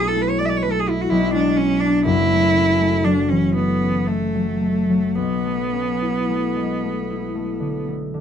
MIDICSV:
0, 0, Header, 1, 3, 480
1, 0, Start_track
1, 0, Tempo, 956938
1, 1042, Time_signature, 3, 2, 24, 8
1, 1042, Tempo, 998336
1, 2002, Tempo, 1096892
1, 2962, Tempo, 1067616
1, 3833, End_track
2, 0, Start_track
2, 0, Title_t, "Cello"
2, 0, Program_c, 0, 42
2, 39, Note_on_c, 0, 69, 66
2, 108, Note_on_c, 0, 71, 61
2, 115, Note_off_c, 0, 69, 0
2, 146, Note_on_c, 0, 73, 63
2, 154, Note_off_c, 0, 71, 0
2, 194, Note_on_c, 0, 74, 66
2, 201, Note_off_c, 0, 73, 0
2, 227, Note_on_c, 0, 76, 61
2, 235, Note_off_c, 0, 74, 0
2, 246, Note_on_c, 0, 74, 56
2, 254, Note_off_c, 0, 76, 0
2, 287, Note_on_c, 0, 73, 62
2, 295, Note_off_c, 0, 74, 0
2, 314, Note_on_c, 0, 71, 65
2, 321, Note_off_c, 0, 73, 0
2, 359, Note_on_c, 0, 69, 59
2, 366, Note_off_c, 0, 71, 0
2, 399, Note_on_c, 0, 68, 58
2, 407, Note_off_c, 0, 69, 0
2, 447, Note_on_c, 0, 64, 65
2, 455, Note_off_c, 0, 68, 0
2, 509, Note_on_c, 0, 66, 62
2, 516, Note_off_c, 0, 64, 0
2, 552, Note_on_c, 0, 64, 83
2, 559, Note_off_c, 0, 66, 0
2, 669, Note_off_c, 0, 64, 0
2, 672, Note_on_c, 0, 62, 73
2, 789, Note_on_c, 0, 61, 74
2, 796, Note_off_c, 0, 62, 0
2, 905, Note_on_c, 0, 62, 74
2, 912, Note_off_c, 0, 61, 0
2, 1029, Note_off_c, 0, 62, 0
2, 1032, Note_on_c, 0, 64, 94
2, 1508, Note_on_c, 0, 62, 71
2, 1515, Note_off_c, 0, 64, 0
2, 1624, Note_on_c, 0, 61, 65
2, 1631, Note_off_c, 0, 62, 0
2, 1749, Note_off_c, 0, 61, 0
2, 1751, Note_on_c, 0, 59, 73
2, 2001, Note_on_c, 0, 57, 65
2, 2007, Note_off_c, 0, 59, 0
2, 2475, Note_on_c, 0, 59, 70
2, 2482, Note_off_c, 0, 57, 0
2, 3685, Note_off_c, 0, 59, 0
2, 3833, End_track
3, 0, Start_track
3, 0, Title_t, "Harp"
3, 0, Program_c, 1, 46
3, 0, Note_on_c, 1, 35, 65
3, 0, Note_on_c, 1, 54, 57
3, 0, Note_on_c, 1, 57, 53
3, 0, Note_on_c, 1, 61, 51
3, 0, Note_on_c, 1, 64, 52
3, 71, Note_off_c, 1, 57, 0
3, 77, Note_on_c, 1, 57, 50
3, 199, Note_on_c, 1, 56, 42
3, 316, Note_off_c, 1, 57, 0
3, 322, Note_on_c, 1, 57, 46
3, 403, Note_off_c, 1, 56, 0
3, 432, Note_off_c, 1, 64, 0
3, 438, Note_on_c, 1, 64, 52
3, 552, Note_off_c, 1, 35, 0
3, 558, Note_on_c, 1, 35, 65
3, 580, Note_off_c, 1, 57, 0
3, 672, Note_on_c, 1, 56, 50
3, 794, Note_off_c, 1, 61, 0
3, 800, Note_on_c, 1, 61, 48
3, 921, Note_on_c, 1, 62, 49
3, 1030, Note_on_c, 1, 30, 58
3, 1034, Note_on_c, 1, 42, 61
3, 1056, Note_off_c, 1, 56, 0
3, 1059, Note_off_c, 1, 35, 0
3, 1060, Note_off_c, 1, 62, 0
3, 1160, Note_on_c, 1, 57, 46
3, 1271, Note_off_c, 1, 61, 0
3, 1277, Note_on_c, 1, 61, 46
3, 1388, Note_off_c, 1, 57, 0
3, 1394, Note_on_c, 1, 57, 49
3, 1426, Note_off_c, 1, 54, 0
3, 1507, Note_on_c, 1, 54, 43
3, 1635, Note_on_c, 1, 52, 42
3, 1752, Note_off_c, 1, 57, 0
3, 1758, Note_on_c, 1, 57, 44
3, 1842, Note_off_c, 1, 52, 0
3, 1878, Note_off_c, 1, 61, 0
3, 1884, Note_on_c, 1, 61, 41
3, 2001, Note_off_c, 1, 57, 0
3, 2006, Note_on_c, 1, 57, 39
3, 2116, Note_off_c, 1, 54, 0
3, 2121, Note_on_c, 1, 54, 38
3, 2236, Note_off_c, 1, 57, 0
3, 2241, Note_on_c, 1, 57, 42
3, 2308, Note_off_c, 1, 64, 0
3, 2357, Note_off_c, 1, 54, 0
3, 2362, Note_on_c, 1, 54, 42
3, 2484, Note_on_c, 1, 35, 48
3, 2490, Note_off_c, 1, 30, 0
3, 2492, Note_off_c, 1, 42, 0
3, 2600, Note_off_c, 1, 57, 0
3, 2605, Note_on_c, 1, 57, 38
3, 2722, Note_off_c, 1, 61, 0
3, 2727, Note_on_c, 1, 61, 41
3, 2853, Note_on_c, 1, 64, 40
3, 2968, Note_off_c, 1, 57, 0
3, 2974, Note_on_c, 1, 57, 36
3, 3094, Note_on_c, 1, 56, 33
3, 3211, Note_off_c, 1, 57, 0
3, 3216, Note_on_c, 1, 57, 38
3, 3295, Note_off_c, 1, 56, 0
3, 3331, Note_off_c, 1, 64, 0
3, 3337, Note_on_c, 1, 64, 37
3, 3444, Note_off_c, 1, 57, 0
3, 3449, Note_on_c, 1, 57, 39
3, 3561, Note_on_c, 1, 50, 34
3, 3683, Note_off_c, 1, 57, 0
3, 3688, Note_on_c, 1, 57, 34
3, 3798, Note_off_c, 1, 50, 0
3, 3804, Note_on_c, 1, 50, 36
3, 3833, Note_off_c, 1, 35, 0
3, 3833, Note_off_c, 1, 50, 0
3, 3833, Note_off_c, 1, 54, 0
3, 3833, Note_off_c, 1, 57, 0
3, 3833, Note_off_c, 1, 61, 0
3, 3833, Note_off_c, 1, 64, 0
3, 3833, End_track
0, 0, End_of_file